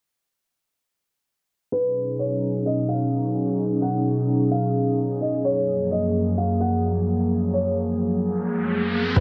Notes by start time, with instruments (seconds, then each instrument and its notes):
1.72 analog synth pad B2 F#3 C#4 D#4 G#4, felt piano B4
2.19 felt piano C#5
2.66 felt piano D#5
2.89 felt piano F5
3.82 felt piano F#5
4.52 felt piano F5
5.21 felt piano D#5
5.44 analog synth pad F#2 F3 F#3 A#3, felt piano C#5
5.91 felt piano D#5
6.38 felt piano F5
6.61 felt piano F#5
7.31 riser
7.54 felt piano C#5
9.16 808-style bass B1, analog synth pad G#3 B3 D#4, felt piano B4